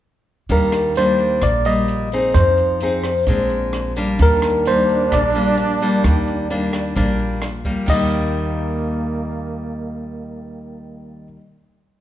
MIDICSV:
0, 0, Header, 1, 6, 480
1, 0, Start_track
1, 0, Key_signature, -3, "major"
1, 0, Tempo, 461184
1, 519, Time_signature, 4, 2, 24, 8
1, 12499, End_track
2, 0, Start_track
2, 0, Title_t, "Tine electric piano"
2, 0, Program_c, 0, 4
2, 540, Note_on_c, 0, 70, 77
2, 979, Note_off_c, 0, 70, 0
2, 1013, Note_on_c, 0, 72, 84
2, 1489, Note_on_c, 0, 74, 79
2, 1503, Note_off_c, 0, 72, 0
2, 1729, Note_on_c, 0, 75, 85
2, 1734, Note_off_c, 0, 74, 0
2, 2408, Note_off_c, 0, 75, 0
2, 2439, Note_on_c, 0, 72, 86
2, 3365, Note_off_c, 0, 72, 0
2, 4397, Note_on_c, 0, 70, 93
2, 4867, Note_on_c, 0, 72, 86
2, 4879, Note_off_c, 0, 70, 0
2, 5345, Note_on_c, 0, 74, 77
2, 5355, Note_off_c, 0, 72, 0
2, 7696, Note_off_c, 0, 74, 0
2, 8219, Note_on_c, 0, 75, 88
2, 11734, Note_off_c, 0, 75, 0
2, 12499, End_track
3, 0, Start_track
3, 0, Title_t, "Trombone"
3, 0, Program_c, 1, 57
3, 4371, Note_on_c, 1, 62, 114
3, 7929, Note_off_c, 1, 62, 0
3, 8208, Note_on_c, 1, 58, 75
3, 11723, Note_off_c, 1, 58, 0
3, 12499, End_track
4, 0, Start_track
4, 0, Title_t, "Nylon-string guitar"
4, 0, Program_c, 2, 24
4, 516, Note_on_c, 2, 51, 47
4, 521, Note_on_c, 2, 55, 49
4, 523, Note_on_c, 2, 58, 44
4, 527, Note_on_c, 2, 62, 50
4, 962, Note_off_c, 2, 55, 0
4, 965, Note_off_c, 2, 58, 0
4, 966, Note_off_c, 2, 62, 0
4, 1011, Note_on_c, 2, 55, 54
4, 1017, Note_on_c, 2, 58, 51
4, 1022, Note_on_c, 2, 62, 59
4, 1458, Note_off_c, 2, 51, 0
4, 1484, Note_on_c, 2, 46, 56
4, 1485, Note_off_c, 2, 55, 0
4, 1488, Note_off_c, 2, 58, 0
4, 1490, Note_off_c, 2, 62, 0
4, 1719, Note_on_c, 2, 55, 49
4, 1726, Note_on_c, 2, 58, 53
4, 2165, Note_off_c, 2, 55, 0
4, 2168, Note_off_c, 2, 58, 0
4, 2219, Note_on_c, 2, 60, 62
4, 2221, Note_on_c, 2, 63, 60
4, 2223, Note_on_c, 2, 68, 62
4, 2423, Note_off_c, 2, 46, 0
4, 2457, Note_on_c, 2, 53, 47
4, 2897, Note_off_c, 2, 60, 0
4, 2897, Note_off_c, 2, 63, 0
4, 2897, Note_off_c, 2, 68, 0
4, 2937, Note_on_c, 2, 60, 50
4, 2944, Note_on_c, 2, 63, 48
4, 2946, Note_on_c, 2, 68, 55
4, 3243, Note_off_c, 2, 60, 0
4, 3245, Note_off_c, 2, 63, 0
4, 3247, Note_off_c, 2, 68, 0
4, 3391, Note_off_c, 2, 53, 0
4, 3414, Note_on_c, 2, 56, 56
4, 3417, Note_on_c, 2, 46, 50
4, 3424, Note_on_c, 2, 60, 55
4, 3427, Note_on_c, 2, 62, 56
4, 4096, Note_off_c, 2, 56, 0
4, 4100, Note_off_c, 2, 60, 0
4, 4100, Note_off_c, 2, 62, 0
4, 4127, Note_on_c, 2, 55, 60
4, 4130, Note_on_c, 2, 58, 61
4, 4137, Note_on_c, 2, 62, 60
4, 4353, Note_off_c, 2, 46, 0
4, 4372, Note_on_c, 2, 51, 48
4, 4813, Note_off_c, 2, 55, 0
4, 4813, Note_off_c, 2, 58, 0
4, 4817, Note_off_c, 2, 62, 0
4, 4855, Note_on_c, 2, 55, 51
4, 4858, Note_on_c, 2, 58, 50
4, 4867, Note_on_c, 2, 62, 62
4, 5310, Note_off_c, 2, 51, 0
4, 5341, Note_on_c, 2, 46, 55
4, 5537, Note_off_c, 2, 55, 0
4, 5537, Note_off_c, 2, 58, 0
4, 5539, Note_off_c, 2, 62, 0
4, 5568, Note_on_c, 2, 55, 48
4, 5573, Note_on_c, 2, 58, 53
4, 5580, Note_on_c, 2, 62, 62
4, 6013, Note_off_c, 2, 55, 0
4, 6016, Note_off_c, 2, 58, 0
4, 6017, Note_off_c, 2, 62, 0
4, 6059, Note_on_c, 2, 55, 56
4, 6063, Note_on_c, 2, 58, 59
4, 6066, Note_on_c, 2, 62, 69
4, 6273, Note_off_c, 2, 46, 0
4, 6285, Note_on_c, 2, 51, 48
4, 6738, Note_off_c, 2, 55, 0
4, 6739, Note_off_c, 2, 58, 0
4, 6740, Note_off_c, 2, 62, 0
4, 6767, Note_on_c, 2, 55, 54
4, 6771, Note_on_c, 2, 58, 49
4, 6777, Note_on_c, 2, 62, 59
4, 7211, Note_off_c, 2, 55, 0
4, 7214, Note_off_c, 2, 58, 0
4, 7215, Note_off_c, 2, 62, 0
4, 7224, Note_off_c, 2, 51, 0
4, 7239, Note_on_c, 2, 46, 53
4, 7247, Note_on_c, 2, 55, 48
4, 7251, Note_on_c, 2, 58, 55
4, 7255, Note_on_c, 2, 62, 58
4, 7724, Note_off_c, 2, 58, 0
4, 7725, Note_off_c, 2, 55, 0
4, 7730, Note_off_c, 2, 62, 0
4, 7966, Note_on_c, 2, 55, 57
4, 7972, Note_on_c, 2, 58, 59
4, 8181, Note_off_c, 2, 46, 0
4, 8182, Note_on_c, 2, 51, 56
4, 8196, Note_off_c, 2, 55, 0
4, 8208, Note_on_c, 2, 55, 54
4, 8212, Note_off_c, 2, 58, 0
4, 8224, Note_on_c, 2, 58, 60
4, 11824, Note_off_c, 2, 51, 0
4, 11851, Note_off_c, 2, 55, 0
4, 11867, Note_off_c, 2, 58, 0
4, 12499, End_track
5, 0, Start_track
5, 0, Title_t, "Upright bass"
5, 0, Program_c, 3, 32
5, 517, Note_on_c, 3, 39, 86
5, 1440, Note_off_c, 3, 39, 0
5, 1480, Note_on_c, 3, 34, 87
5, 2403, Note_off_c, 3, 34, 0
5, 2442, Note_on_c, 3, 41, 87
5, 3366, Note_off_c, 3, 41, 0
5, 3401, Note_on_c, 3, 34, 98
5, 4326, Note_off_c, 3, 34, 0
5, 4367, Note_on_c, 3, 39, 94
5, 5289, Note_off_c, 3, 39, 0
5, 5335, Note_on_c, 3, 34, 92
5, 6253, Note_off_c, 3, 34, 0
5, 6292, Note_on_c, 3, 39, 93
5, 7210, Note_off_c, 3, 39, 0
5, 7249, Note_on_c, 3, 34, 93
5, 8167, Note_off_c, 3, 34, 0
5, 8206, Note_on_c, 3, 39, 84
5, 11721, Note_off_c, 3, 39, 0
5, 12499, End_track
6, 0, Start_track
6, 0, Title_t, "Drums"
6, 513, Note_on_c, 9, 42, 38
6, 514, Note_on_c, 9, 36, 55
6, 617, Note_off_c, 9, 42, 0
6, 618, Note_off_c, 9, 36, 0
6, 752, Note_on_c, 9, 37, 54
6, 752, Note_on_c, 9, 42, 26
6, 856, Note_off_c, 9, 37, 0
6, 856, Note_off_c, 9, 42, 0
6, 994, Note_on_c, 9, 42, 41
6, 1098, Note_off_c, 9, 42, 0
6, 1235, Note_on_c, 9, 42, 26
6, 1339, Note_off_c, 9, 42, 0
6, 1474, Note_on_c, 9, 37, 53
6, 1474, Note_on_c, 9, 42, 42
6, 1477, Note_on_c, 9, 36, 55
6, 1578, Note_off_c, 9, 37, 0
6, 1578, Note_off_c, 9, 42, 0
6, 1581, Note_off_c, 9, 36, 0
6, 1718, Note_on_c, 9, 42, 24
6, 1822, Note_off_c, 9, 42, 0
6, 1960, Note_on_c, 9, 42, 43
6, 2064, Note_off_c, 9, 42, 0
6, 2206, Note_on_c, 9, 42, 25
6, 2310, Note_off_c, 9, 42, 0
6, 2441, Note_on_c, 9, 36, 54
6, 2441, Note_on_c, 9, 37, 54
6, 2441, Note_on_c, 9, 42, 38
6, 2545, Note_off_c, 9, 36, 0
6, 2545, Note_off_c, 9, 37, 0
6, 2545, Note_off_c, 9, 42, 0
6, 2679, Note_on_c, 9, 42, 25
6, 2784, Note_off_c, 9, 42, 0
6, 2919, Note_on_c, 9, 42, 38
6, 3023, Note_off_c, 9, 42, 0
6, 3159, Note_on_c, 9, 37, 51
6, 3159, Note_on_c, 9, 42, 22
6, 3263, Note_off_c, 9, 37, 0
6, 3263, Note_off_c, 9, 42, 0
6, 3399, Note_on_c, 9, 42, 41
6, 3403, Note_on_c, 9, 36, 56
6, 3503, Note_off_c, 9, 42, 0
6, 3507, Note_off_c, 9, 36, 0
6, 3642, Note_on_c, 9, 42, 23
6, 3746, Note_off_c, 9, 42, 0
6, 3882, Note_on_c, 9, 37, 50
6, 3882, Note_on_c, 9, 42, 36
6, 3986, Note_off_c, 9, 37, 0
6, 3986, Note_off_c, 9, 42, 0
6, 4123, Note_on_c, 9, 42, 25
6, 4227, Note_off_c, 9, 42, 0
6, 4359, Note_on_c, 9, 42, 42
6, 4366, Note_on_c, 9, 36, 52
6, 4463, Note_off_c, 9, 42, 0
6, 4470, Note_off_c, 9, 36, 0
6, 4603, Note_on_c, 9, 37, 57
6, 4603, Note_on_c, 9, 42, 24
6, 4707, Note_off_c, 9, 37, 0
6, 4707, Note_off_c, 9, 42, 0
6, 4844, Note_on_c, 9, 42, 37
6, 4948, Note_off_c, 9, 42, 0
6, 5092, Note_on_c, 9, 42, 24
6, 5196, Note_off_c, 9, 42, 0
6, 5328, Note_on_c, 9, 37, 58
6, 5328, Note_on_c, 9, 42, 44
6, 5330, Note_on_c, 9, 36, 54
6, 5432, Note_off_c, 9, 37, 0
6, 5432, Note_off_c, 9, 42, 0
6, 5434, Note_off_c, 9, 36, 0
6, 5569, Note_on_c, 9, 42, 25
6, 5673, Note_off_c, 9, 42, 0
6, 5804, Note_on_c, 9, 42, 42
6, 5908, Note_off_c, 9, 42, 0
6, 6051, Note_on_c, 9, 42, 24
6, 6155, Note_off_c, 9, 42, 0
6, 6290, Note_on_c, 9, 36, 55
6, 6290, Note_on_c, 9, 37, 56
6, 6290, Note_on_c, 9, 42, 44
6, 6394, Note_off_c, 9, 36, 0
6, 6394, Note_off_c, 9, 37, 0
6, 6394, Note_off_c, 9, 42, 0
6, 6532, Note_on_c, 9, 42, 25
6, 6636, Note_off_c, 9, 42, 0
6, 6770, Note_on_c, 9, 42, 37
6, 6874, Note_off_c, 9, 42, 0
6, 7006, Note_on_c, 9, 37, 58
6, 7006, Note_on_c, 9, 42, 25
6, 7110, Note_off_c, 9, 37, 0
6, 7110, Note_off_c, 9, 42, 0
6, 7248, Note_on_c, 9, 36, 57
6, 7248, Note_on_c, 9, 42, 43
6, 7352, Note_off_c, 9, 36, 0
6, 7352, Note_off_c, 9, 42, 0
6, 7486, Note_on_c, 9, 42, 25
6, 7590, Note_off_c, 9, 42, 0
6, 7720, Note_on_c, 9, 37, 55
6, 7720, Note_on_c, 9, 42, 37
6, 7824, Note_off_c, 9, 37, 0
6, 7824, Note_off_c, 9, 42, 0
6, 7961, Note_on_c, 9, 42, 23
6, 7962, Note_on_c, 9, 36, 48
6, 8065, Note_off_c, 9, 42, 0
6, 8066, Note_off_c, 9, 36, 0
6, 8200, Note_on_c, 9, 49, 58
6, 8202, Note_on_c, 9, 36, 70
6, 8304, Note_off_c, 9, 49, 0
6, 8306, Note_off_c, 9, 36, 0
6, 12499, End_track
0, 0, End_of_file